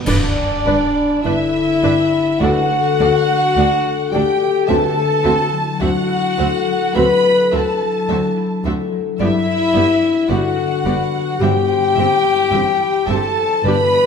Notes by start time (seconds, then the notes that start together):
Already playing: D3 B3 D4 G4
0.06 G1 G2 D4 B4 D5, concert bass drum, crash
0.37 G4
0.65 G1 G2 D4 B4 D5
0.96 B3
1.24 G1 G2 D3 D4 E4 B4 D5 E5
1.54 D4
1.82 G1 G2 D4 G4 B4 D5
2.12 B3
2.40 D2 D3 D4 F#4 A4 D5 F#5
2.70 A4
2.99 D2 D4 A4 D5
3.28 A3
3.56 D2 D4 A4 D5
3.84 A4
4.12 D2 D4 G4 A4 D5 G5
4.41 A3
4.67 D2 D3 C4 F#4 A4 E5 A5
4.96 A4
5.24 D2 C4 E4 F#4 E5
5.51 F#3
5.79 D2 C4 D4 F#4 E5 F#5
6.08 E4
6.37 D2 C4 F#4 A4 E5
6.66 F#3
6.94 D2 C4 D4 F#4 B4 E5 B5
7.24 A4
7.51 D2 C4 E4 F#4 A4 E5 A5
7.81 F#3
8.08 D2 C4 D4 F#4 E5
8.36 E4
8.64 D2 C4 F#4 A4 E5
8.92 F#3
9.19 G1 G2 B3 E4 G4 D5 E5
9.46 B4
9.73 G1 G2 B3 D4 G4 D5
10.01 G3
10.28 G1 G2 D3 B3 F#4 G4 D5 F#5
10.57 D4
10.85 G1 G2 B3 G4 B4 D5
11.13 G3
11.39 G1 G2 C4 G4 E5 G5
11.68 C5
11.95 G1 G2 C4 E4 G4 E5
12.23 G3
12.50 G1 G2 E3 C4 G4 E5
12.80 E4
13.06 G1 G2 C4 G4 A4 C5 E5 A5
13.37 G3
13.64 G1 G2 D4 G4 B4 D5 B5
13.93 D5